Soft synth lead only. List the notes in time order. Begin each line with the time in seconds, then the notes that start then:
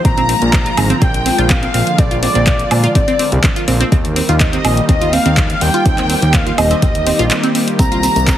0.05 A#5
1.02 G5
1.50 F5
1.98 D5
2.23 D5
2.96 D5
4.41 D#5
4.89 D#5
5.13 F5
5.61 G5
6.34 F5
6.58 D#5
7.79 A#5